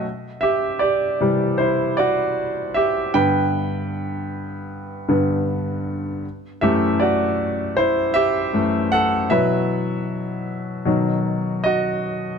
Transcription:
<<
  \new Staff \with { instrumentName = "Grand piano" } { \time 4/4 \key c \lydian \tempo 4 = 78 r8 <g' e''>8 <g' d''>4 <e' c''>8 <fis' d''>4 <g' e''>8 | <b' g''>4 r2. | r8 <g' e''>8 <fis' d''>4 <e' c''>8 <g' e''>4 <a' fis''>8 | <b' e''>4 r2 <fis' dis''>4 | }
  \new Staff \with { instrumentName = "Grand piano" } { \clef bass \time 4/4 \key c \lydian r4. <c e g>8 r2 | <g, d b>2~ <g, d b>8 <g, d b>8 r4 | r8 <fis, e a>4. r4 <fis, e a>8 r8 | <b, e fis>2 <b, dis fis>2 | }
>>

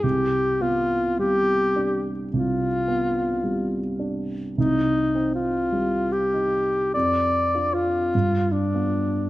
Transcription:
<<
  \new Staff \with { instrumentName = "Alto saxophone" } { \time 4/4 \key g \phrygian \tempo 4 = 52 g'8 f'8 g'8. r16 f'4. r8 | \tuplet 3/2 { ees'4 f'8~ f'8 g'4 d''4 f'8~ f'8 d'4 } | }
  \new Staff \with { instrumentName = "Grand piano" } { \time 4/4 \key g \phrygian c,8 b8 g8 d'8 c,8 b8 g8 d'8 | c,8 c'8 g8 ees'8 f,8 <d' f'>8 g,8 <b f'>8 | }
>>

